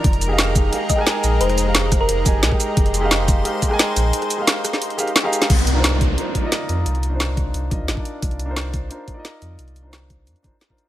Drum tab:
CC |----------------|----------------|----------------|----------------|
HH |xxx-x-x-x-x-x-x-|xxx-x-x-x-x-x-x-|xxx-x-x-x-x-x-x-|xxx-x-x-xxxxx-xx|
SH |--x---x---x---x-|--x---x---x---x-|--x---x---x---x-|--x---x---x---x-|
SD |----o------ro---|-r--o-r-----or--|----o------ro---|-r--o-ro----o--o|
BD |o-----o---o-----|------o---o--o--|o-----o---o-----|----------------|

CC |x---------------|----------------|----------------|----------------|
HH |xxx-x-x-x-x-x-x-|xxx-x-x-x-x-x-x-|xxx-x-x-x-x-x-x-|xxx-x-x-xxx-x-x-|
SH |----------------|----------------|----------------|----------------|
SD |----o-------o---|----o-------o---|----o-------o---|----o-------o---|
BD |o-----o---o-----|------o---o--o--|o-----o---o-----|------o---o--o--|